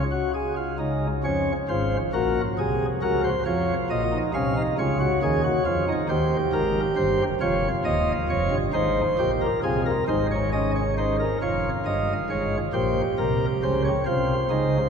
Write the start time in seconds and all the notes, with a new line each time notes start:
0.11 F#4
0.34 G#4
0.57 F4
0.78 C#2 C#3 D#4
1.24 F2 F3 C#4 C#5
1.69 G#1 G#2 F4 C5
2.13 A#1 A#2 F#4 A#4
2.58 C2 C3 G#4
3.02 C#2 C#3 F#4 A#4
3.24 C5
3.45 F2 F3 F4 C#5
3.90 A#1 A#2 D#5
4.12 D#4
4.34 C2 C3 C#4 F5
4.56 D#4
4.78 C#2 C#3 F4 C#5
5.00 F#4
5.23 D#2 D#3 G#4
5.44 F#4
5.65 F2 F3 F4
5.88 D#4
6.09 D#2 D#3 G4 C5
6.53 G#1 G#2 A#4
6.96 G1 G2 C5
7.40 F1 F2 F4 C#5
7.85 D#1 D#2 D#5
8.29 F1 F2 C#5
8.51 G1 G2
8.73 G#1 G#2 D#4 C5
9.19 A#1 A#2 G4
9.41 A#4
9.63 C2 C3 F4 G#4
9.86 A#4
10.08 G#1 G#2 D#4 C5
10.31 C#5
10.52 C#4 D#5
10.75 C#5
10.97 D#4 C5
11.20 A#4
11.41 F1 F2 F4 C#5
11.86 G1 G2 D#5
12.30 G#1 G#2 C#5
12.73 A#1 A#2 G4 C5
13.18 C2 C3 A#4
13.63 C#2 C#3 C5
13.84 C#5
14.06 C2 C3 F4 C5
14.50 C#2 C#3 D#4